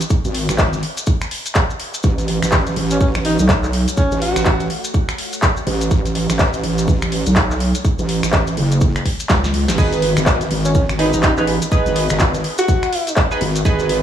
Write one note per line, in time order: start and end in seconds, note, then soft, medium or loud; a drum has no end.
0.00 2.00 B4 medium
0.00 2.00 G#5 medium
0.00 2.00 D#6 medium
0.00 closed hi-hat medium
0.00 maracas medium
0.10 kick loud
0.10 maracas medium
0.25 0.47 G#1 loud
0.25 closed hi-hat soft
0.25 maracas soft
0.34 open hi-hat loud
0.49 0.81 G#1 medium
0.49 finger snap medium
0.49 closed hi-hat medium
0.49 maracas medium
0.58 kick loud
0.58 clap loud
0.58 maracas medium
0.73 closed hi-hat soft
0.73 maracas soft
0.83 open hi-hat medium
0.97 closed hi-hat medium
0.97 maracas medium
1.06 kick loud
1.06 maracas medium
1.21 finger snap medium
1.21 closed hi-hat soft
1.21 maracas soft
1.31 open hi-hat loud
1.46 closed hi-hat medium
1.46 maracas medium
1.55 kick loud
1.55 clap loud
1.55 maracas medium
1.70 maracas soft
1.80 open hi-hat loud
1.94 closed hi-hat medium
1.94 maracas medium
2.03 2.40 A1 loud
2.03 9.74 A4 medium
2.03 5.87 F#5 medium
2.03 9.74 C#6 medium
2.03 kick loud
2.03 maracas medium
2.18 closed hi-hat soft
2.18 maracas soft
2.28 open hi-hat loud
2.42 2.75 A1 medium
2.42 finger snap medium
2.42 closed hi-hat medium
2.42 maracas medium
2.52 kick loud
2.52 clap loud
2.52 maracas medium
2.66 closed hi-hat medium
2.66 maracas soft
2.76 3.13 A1 loud
2.76 open hi-hat medium
2.91 2.97 C#4 medium
2.91 closed hi-hat medium
2.91 maracas medium
3.01 3.10 C#4 medium
3.01 kick loud
3.01 maracas medium
3.15 3.37 A1 loud
3.15 finger snap medium
3.15 closed hi-hat soft
3.15 maracas soft
3.25 3.34 D#4 medium
3.25 open hi-hat loud
3.39 3.85 B1 medium
3.39 3.46 D#4 medium
3.39 closed hi-hat medium
3.39 maracas medium
3.49 kick loud
3.49 clap loud
3.49 maracas medium
3.63 clap soft
3.63 maracas soft
3.73 open hi-hat medium
3.88 closed hi-hat medium
3.88 maracas medium
3.97 4.20 C#4 medium
3.97 kick loud
3.97 maracas medium
4.12 4.34 A1 loud
4.12 closed hi-hat medium
4.12 maracas soft
4.22 4.70 F#4 loud
4.22 open hi-hat loud
4.36 4.68 A1 loud
4.36 finger snap medium
4.36 closed hi-hat medium
4.36 maracas medium
4.45 kick loud
4.45 clap loud
4.45 maracas medium
4.60 closed hi-hat medium
4.60 maracas soft
4.70 open hi-hat medium
4.84 closed hi-hat medium
4.84 maracas medium
4.94 kick loud
4.94 maracas medium
5.09 finger snap medium
5.09 closed hi-hat soft
5.09 maracas soft
5.18 open hi-hat loud
5.33 closed hi-hat medium
5.33 maracas medium
5.42 kick loud
5.42 clap loud
5.42 maracas medium
5.57 maracas soft
5.67 5.89 A1 loud
5.67 open hi-hat medium
5.81 closed hi-hat medium
5.81 maracas medium
5.91 6.27 A1 loud
5.91 13.61 G#5 medium
5.91 kick loud
5.91 maracas medium
6.05 closed hi-hat medium
6.05 maracas soft
6.15 open hi-hat loud
6.30 6.62 A1 loud
6.30 finger snap medium
6.30 closed hi-hat medium
6.30 maracas medium
6.39 kick loud
6.39 clap loud
6.39 maracas medium
6.53 closed hi-hat medium
6.53 maracas soft
6.64 7.00 A1 loud
6.64 open hi-hat medium
6.78 closed hi-hat medium
6.78 maracas medium
6.88 kick loud
6.88 maracas medium
7.02 7.24 A1 medium
7.02 finger snap medium
7.02 closed hi-hat soft
7.02 maracas soft
7.12 open hi-hat loud
7.26 7.73 B1 loud
7.26 closed hi-hat medium
7.26 maracas medium
7.36 kick loud
7.36 clap loud
7.36 maracas medium
7.50 clap soft
7.50 maracas soft
7.60 open hi-hat medium
7.75 closed hi-hat medium
7.75 maracas medium
7.85 kick loud
7.85 maracas medium
7.99 8.21 A1 loud
7.99 closed hi-hat medium
7.99 maracas soft
8.09 open hi-hat loud
8.23 8.56 A1 loud
8.23 finger snap medium
8.23 closed hi-hat medium
8.23 maracas medium
8.32 kick loud
8.32 clap loud
8.32 maracas medium
8.47 closed hi-hat medium
8.47 maracas soft
8.57 9.04 F#1 medium
8.57 open hi-hat medium
8.72 closed hi-hat medium
8.72 maracas medium
8.81 kick loud
8.81 maracas medium
8.96 finger snap medium
8.96 closed hi-hat soft
8.96 maracas soft
9.05 kick medium
9.05 open hi-hat loud
9.20 closed hi-hat medium
9.20 maracas medium
9.29 9.66 C#2 loud
9.29 kick loud
9.29 snare medium
9.29 clap loud
9.29 maracas medium
9.44 snare medium
9.44 closed hi-hat soft
9.44 maracas soft
9.54 open hi-hat medium
9.68 9.77 A1 medium
9.68 snare medium
9.68 closed hi-hat medium
9.68 maracas medium
9.78 10.14 G#1 loud
9.78 10.97 B3 medium
9.78 10.97 D#4 medium
9.78 10.97 G#4 medium
9.78 10.97 B4 loud
9.78 14.03 B4 medium
9.78 14.03 D#6 medium
9.78 kick loud
9.78 crash medium
9.78 maracas medium
9.93 closed hi-hat medium
9.93 maracas soft
10.02 open hi-hat loud
10.17 10.49 G#1 loud
10.17 finger snap medium
10.17 closed hi-hat medium
10.17 maracas medium
10.26 kick loud
10.26 clap loud
10.26 maracas medium
10.41 closed hi-hat medium
10.41 maracas soft
10.51 10.87 G#1 loud
10.51 open hi-hat medium
10.65 10.71 C#4 medium
10.65 closed hi-hat medium
10.65 maracas medium
10.75 10.84 C#4 medium
10.75 kick loud
10.75 maracas medium
10.89 11.11 G#1 medium
10.89 finger snap medium
10.89 closed hi-hat soft
10.89 maracas soft
10.99 11.11 B3 medium
10.99 11.08 D#4 medium
10.99 11.11 D#4 medium
10.99 11.11 G#4 medium
10.99 11.11 B4 medium
10.99 open hi-hat loud
11.13 11.60 A1 medium
11.13 11.20 D#4 medium
11.13 closed hi-hat medium
11.13 maracas medium
11.23 11.33 D#4 medium
11.23 kick loud
11.23 clap loud
11.23 maracas medium
11.37 11.52 B3 medium
11.37 11.44 D#4 medium
11.37 11.52 D#4 medium
11.37 11.52 G#4 medium
11.37 11.52 B4 medium
11.37 clap soft
11.37 maracas soft
11.47 open hi-hat medium
11.62 closed hi-hat medium
11.62 maracas medium
11.72 12.90 B3 loud
11.72 12.90 D#4 medium
11.72 12.90 G#4 medium
11.72 12.90 B4 loud
11.72 kick loud
11.72 maracas medium
11.86 12.08 G#1 loud
11.86 closed hi-hat medium
11.86 maracas soft
11.96 open hi-hat loud
12.09 12.43 G#1 medium
12.09 finger snap medium
12.09 closed hi-hat medium
12.09 maracas medium
12.19 kick loud
12.19 clap loud
12.19 maracas medium
12.34 closed hi-hat medium
12.34 maracas soft
12.44 open hi-hat medium
12.58 13.26 F#4 loud
12.58 closed hi-hat medium
12.58 maracas medium
12.68 kick loud
12.68 maracas medium
12.83 finger snap medium
12.83 closed hi-hat soft
12.83 maracas soft
12.93 open hi-hat loud
13.07 closed hi-hat medium
13.07 maracas medium
13.16 kick loud
13.16 clap loud
13.16 maracas medium
13.31 13.39 B3 medium
13.31 13.39 D#4 medium
13.31 13.39 G#4 medium
13.31 13.39 B4 medium
13.31 maracas soft
13.41 13.64 G#1 loud
13.41 open hi-hat loud
13.56 closed hi-hat medium
13.56 maracas medium
13.65 14.02 G#1 loud
13.65 14.03 B3 medium
13.65 14.03 D#4 medium
13.65 14.03 G#4 medium
13.65 14.03 B4 loud
13.65 kick loud
13.65 maracas medium
13.79 closed hi-hat medium
13.79 maracas soft
13.89 open hi-hat loud